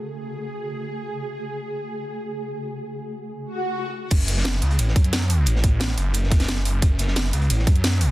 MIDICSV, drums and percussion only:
0, 0, Header, 1, 2, 480
1, 0, Start_track
1, 0, Key_signature, 3, "minor"
1, 0, Tempo, 338983
1, 62, Time_signature, 4, 2, 24, 8
1, 11487, End_track
2, 0, Start_track
2, 0, Title_t, "Drums"
2, 5814, Note_on_c, 9, 42, 91
2, 5822, Note_off_c, 9, 42, 0
2, 5822, Note_on_c, 9, 36, 114
2, 5822, Note_on_c, 9, 42, 103
2, 5822, Note_on_c, 9, 49, 100
2, 5963, Note_off_c, 9, 36, 0
2, 5963, Note_off_c, 9, 42, 0
2, 5963, Note_off_c, 9, 49, 0
2, 6056, Note_on_c, 9, 38, 44
2, 6057, Note_on_c, 9, 42, 72
2, 6062, Note_off_c, 9, 42, 0
2, 6062, Note_on_c, 9, 42, 69
2, 6189, Note_off_c, 9, 38, 0
2, 6189, Note_on_c, 9, 38, 54
2, 6203, Note_off_c, 9, 42, 0
2, 6293, Note_off_c, 9, 38, 0
2, 6293, Note_on_c, 9, 38, 108
2, 6301, Note_on_c, 9, 42, 91
2, 6302, Note_off_c, 9, 38, 0
2, 6302, Note_off_c, 9, 42, 0
2, 6302, Note_on_c, 9, 38, 126
2, 6302, Note_on_c, 9, 42, 100
2, 6421, Note_off_c, 9, 38, 0
2, 6421, Note_on_c, 9, 38, 52
2, 6443, Note_off_c, 9, 42, 0
2, 6533, Note_on_c, 9, 42, 62
2, 6542, Note_off_c, 9, 42, 0
2, 6542, Note_on_c, 9, 42, 70
2, 6562, Note_off_c, 9, 38, 0
2, 6663, Note_off_c, 9, 42, 0
2, 6663, Note_on_c, 9, 42, 47
2, 6777, Note_off_c, 9, 42, 0
2, 6777, Note_on_c, 9, 42, 84
2, 6782, Note_off_c, 9, 42, 0
2, 6782, Note_on_c, 9, 42, 102
2, 6907, Note_on_c, 9, 38, 45
2, 6924, Note_off_c, 9, 42, 0
2, 7022, Note_on_c, 9, 36, 102
2, 7022, Note_on_c, 9, 42, 68
2, 7023, Note_off_c, 9, 42, 0
2, 7023, Note_on_c, 9, 42, 74
2, 7049, Note_off_c, 9, 38, 0
2, 7142, Note_off_c, 9, 42, 0
2, 7142, Note_on_c, 9, 42, 42
2, 7163, Note_off_c, 9, 36, 0
2, 7259, Note_off_c, 9, 42, 0
2, 7259, Note_on_c, 9, 42, 85
2, 7262, Note_off_c, 9, 42, 0
2, 7262, Note_on_c, 9, 38, 120
2, 7262, Note_on_c, 9, 42, 101
2, 7383, Note_off_c, 9, 38, 0
2, 7383, Note_on_c, 9, 38, 47
2, 7404, Note_off_c, 9, 42, 0
2, 7503, Note_on_c, 9, 46, 83
2, 7507, Note_on_c, 9, 42, 67
2, 7525, Note_off_c, 9, 38, 0
2, 7644, Note_off_c, 9, 46, 0
2, 7649, Note_off_c, 9, 42, 0
2, 7731, Note_on_c, 9, 42, 93
2, 7742, Note_off_c, 9, 42, 0
2, 7742, Note_on_c, 9, 42, 101
2, 7868, Note_on_c, 9, 38, 50
2, 7884, Note_off_c, 9, 42, 0
2, 7982, Note_on_c, 9, 36, 65
2, 7982, Note_on_c, 9, 42, 71
2, 7987, Note_off_c, 9, 42, 0
2, 7987, Note_on_c, 9, 42, 65
2, 8010, Note_off_c, 9, 38, 0
2, 8123, Note_off_c, 9, 36, 0
2, 8129, Note_off_c, 9, 42, 0
2, 8211, Note_on_c, 9, 38, 112
2, 8219, Note_on_c, 9, 42, 87
2, 8222, Note_off_c, 9, 38, 0
2, 8222, Note_off_c, 9, 42, 0
2, 8222, Note_on_c, 9, 38, 127
2, 8222, Note_on_c, 9, 42, 106
2, 8338, Note_off_c, 9, 38, 0
2, 8338, Note_on_c, 9, 38, 41
2, 8364, Note_off_c, 9, 42, 0
2, 8457, Note_on_c, 9, 42, 67
2, 8462, Note_off_c, 9, 42, 0
2, 8462, Note_on_c, 9, 42, 69
2, 8479, Note_off_c, 9, 38, 0
2, 8604, Note_off_c, 9, 42, 0
2, 8690, Note_on_c, 9, 42, 92
2, 8702, Note_off_c, 9, 42, 0
2, 8702, Note_on_c, 9, 42, 104
2, 8828, Note_on_c, 9, 38, 44
2, 8843, Note_off_c, 9, 42, 0
2, 8928, Note_off_c, 9, 38, 0
2, 8928, Note_on_c, 9, 38, 106
2, 8940, Note_on_c, 9, 42, 84
2, 8942, Note_off_c, 9, 42, 0
2, 8942, Note_on_c, 9, 36, 111
2, 8942, Note_on_c, 9, 42, 73
2, 9060, Note_off_c, 9, 38, 0
2, 9060, Note_on_c, 9, 38, 112
2, 9062, Note_off_c, 9, 38, 0
2, 9062, Note_off_c, 9, 42, 0
2, 9062, Note_on_c, 9, 38, 40
2, 9062, Note_on_c, 9, 42, 41
2, 9067, Note_off_c, 9, 42, 0
2, 9067, Note_on_c, 9, 42, 82
2, 9083, Note_off_c, 9, 36, 0
2, 9177, Note_off_c, 9, 42, 0
2, 9177, Note_on_c, 9, 42, 89
2, 9179, Note_off_c, 9, 38, 0
2, 9179, Note_on_c, 9, 38, 126
2, 9182, Note_off_c, 9, 38, 0
2, 9182, Note_off_c, 9, 42, 0
2, 9182, Note_on_c, 9, 38, 123
2, 9182, Note_on_c, 9, 42, 98
2, 9311, Note_off_c, 9, 38, 0
2, 9311, Note_on_c, 9, 38, 53
2, 9324, Note_off_c, 9, 42, 0
2, 9422, Note_on_c, 9, 46, 76
2, 9425, Note_on_c, 9, 42, 75
2, 9453, Note_off_c, 9, 38, 0
2, 9564, Note_off_c, 9, 46, 0
2, 9567, Note_off_c, 9, 42, 0
2, 9656, Note_on_c, 9, 42, 88
2, 9662, Note_off_c, 9, 42, 0
2, 9662, Note_on_c, 9, 36, 121
2, 9662, Note_on_c, 9, 42, 95
2, 9803, Note_off_c, 9, 36, 0
2, 9803, Note_off_c, 9, 42, 0
2, 9892, Note_on_c, 9, 42, 62
2, 9902, Note_off_c, 9, 42, 0
2, 9902, Note_on_c, 9, 42, 67
2, 9910, Note_on_c, 9, 38, 44
2, 10020, Note_off_c, 9, 38, 0
2, 10020, Note_on_c, 9, 38, 50
2, 10043, Note_off_c, 9, 42, 0
2, 10134, Note_on_c, 9, 42, 78
2, 10141, Note_off_c, 9, 38, 0
2, 10141, Note_on_c, 9, 38, 126
2, 10142, Note_off_c, 9, 38, 0
2, 10142, Note_off_c, 9, 42, 0
2, 10142, Note_on_c, 9, 38, 127
2, 10142, Note_on_c, 9, 42, 99
2, 10267, Note_off_c, 9, 38, 0
2, 10267, Note_on_c, 9, 38, 54
2, 10283, Note_off_c, 9, 42, 0
2, 10382, Note_on_c, 9, 42, 67
2, 10385, Note_off_c, 9, 42, 0
2, 10385, Note_on_c, 9, 42, 67
2, 10409, Note_off_c, 9, 38, 0
2, 10499, Note_off_c, 9, 42, 0
2, 10499, Note_on_c, 9, 42, 46
2, 10621, Note_off_c, 9, 42, 0
2, 10621, Note_on_c, 9, 42, 93
2, 10626, Note_off_c, 9, 42, 0
2, 10626, Note_on_c, 9, 42, 87
2, 10749, Note_on_c, 9, 38, 45
2, 10768, Note_off_c, 9, 42, 0
2, 10861, Note_on_c, 9, 36, 113
2, 10861, Note_on_c, 9, 42, 71
2, 10863, Note_off_c, 9, 42, 0
2, 10863, Note_on_c, 9, 42, 70
2, 10890, Note_off_c, 9, 38, 0
2, 10981, Note_off_c, 9, 42, 0
2, 10981, Note_on_c, 9, 42, 40
2, 11003, Note_off_c, 9, 36, 0
2, 11099, Note_off_c, 9, 42, 0
2, 11099, Note_on_c, 9, 42, 90
2, 11101, Note_off_c, 9, 42, 0
2, 11101, Note_on_c, 9, 38, 127
2, 11101, Note_on_c, 9, 42, 96
2, 11224, Note_off_c, 9, 38, 0
2, 11224, Note_on_c, 9, 38, 51
2, 11243, Note_off_c, 9, 42, 0
2, 11341, Note_on_c, 9, 46, 77
2, 11344, Note_on_c, 9, 42, 65
2, 11365, Note_off_c, 9, 38, 0
2, 11483, Note_off_c, 9, 46, 0
2, 11485, Note_off_c, 9, 42, 0
2, 11487, End_track
0, 0, End_of_file